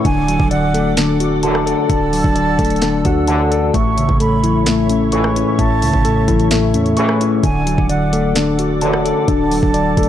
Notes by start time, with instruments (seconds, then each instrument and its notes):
Already playing: analog synth pad A4 F#5
0.05 808-style bass D1, clean electric guitar D3, tine electric piano D4, analog synth pad D5 D6, flute G#5, kick, closed hi-hat
0.28 clean electric guitar F#3, closed hi-hat
0.40 808-style bass D1, kick
0.51 clean electric guitar D3, tine electric piano D5, flute F#5, closed hi-hat
0.74 clean electric guitar A3, tine electric piano A4, closed hi-hat
0.97 clean electric guitar D3, tine electric piano D4, snare, closed hi-hat
1.20 clean electric guitar D4, tine electric piano F#4, closed hi-hat
1.43 brass ensemble A1 F#2 D3, clean electric guitar D3, tine electric piano A5, closed hi-hat
1.55 cross-stick
1.66 tine electric piano A4, clean electric guitar D5, closed hi-hat
1.90 808-style bass D1, clean electric guitar D3, tine electric piano D4, flute A5, analog synth pad E6, kick, closed hi-hat
2.13 clean electric guitar F#3, open hi-hat
2.24 808-style bass D1, kick
2.36 clean electric guitar D3, tine electric piano D5, closed hi-hat
2.59 808-style bass D1, clean electric guitar A3, tine electric piano A4, kick, closed hi-hat
2.65 closed hi-hat
2.70 closed hi-hat
2.76 closed hi-hat
2.82 clean electric guitar D3, tine electric piano D4, snare, closed hi-hat
3.05 808-style bass D2, clean electric guitar D4, tine electric piano F#4, flute F#5, kick, closed hi-hat
3.27 brass ensemble A1 F#2 D3, clean electric guitar D3, tine electric piano A5, closed hi-hat
3.51 tine electric piano A4, clean electric guitar D5, closed hi-hat
3.74 808-style bass A1, clean electric guitar A2, tine electric piano A3, analog synth pad C#5 E5 C#6, flute C#6, kick, closed hi-hat
3.97 clean electric guitar C#3, closed hi-hat
4.09 808-style bass A1, kick
4.20 clean electric guitar A2, tine electric piano A4, flute B5, closed hi-hat
4.44 clean electric guitar E3, tine electric piano E4, closed hi-hat
4.66 clean electric guitar A2, tine electric piano A3, snare, closed hi-hat
4.89 clean electric guitar A3, tine electric piano C#4, closed hi-hat
5.12 brass ensemble C#2 A2 E3, clean electric guitar A2, tine electric piano C#6, closed hi-hat
5.24 cross-stick
5.36 clean electric guitar C#4, tine electric piano E4, closed hi-hat
5.59 808-style bass A1, clean electric guitar A2, tine electric piano A3, flute A5, kick, closed hi-hat
5.82 808-style bass C#2, clean electric guitar C#3, open hi-hat
5.93 808-style bass A1, kick
6.05 clean electric guitar A2, tine electric piano A4, closed hi-hat
6.28 808-style bass A1, clean electric guitar E3, tine electric piano E4, kick, closed hi-hat
6.40 closed hi-hat
6.51 clean electric guitar A2, tine electric piano A3, snare, closed hi-hat
6.74 808-style bass E2, clean electric guitar A3, tine electric piano C#4, closed hi-hat
6.86 closed hi-hat
6.97 brass ensemble C#2 A2 E3, clean electric guitar A2, tine electric piano C#6, closed hi-hat
7.09 cross-stick
7.20 clean electric guitar C#4, tine electric piano E4, closed hi-hat
7.43 808-style bass D1, clean electric guitar D3, tine electric piano D4, analog synth pad A4 D5 F#5 D6, flute G#5, kick, closed hi-hat
7.66 clean electric guitar F#3, closed hi-hat
7.78 808-style bass D1, kick
7.89 clean electric guitar D3, tine electric piano D5, flute F#5, closed hi-hat
8.13 clean electric guitar A3, tine electric piano A4, closed hi-hat
8.35 clean electric guitar D3, tine electric piano D4, snare, closed hi-hat
8.59 clean electric guitar D4, tine electric piano F#4, closed hi-hat
8.81 brass ensemble A1 F#2 D3, clean electric guitar D3, tine electric piano A5, closed hi-hat
8.93 cross-stick
9.05 tine electric piano A4, clean electric guitar D5, closed hi-hat
9.28 808-style bass D1, clean electric guitar D3, tine electric piano D4, flute A5, kick, closed hi-hat
9.51 clean electric guitar F#3, open hi-hat
9.63 808-style bass D1, kick
9.74 clean electric guitar D3, tine electric piano D5, closed hi-hat
9.97 808-style bass D1, clean electric guitar A3, tine electric piano A4, kick, closed hi-hat
10.03 closed hi-hat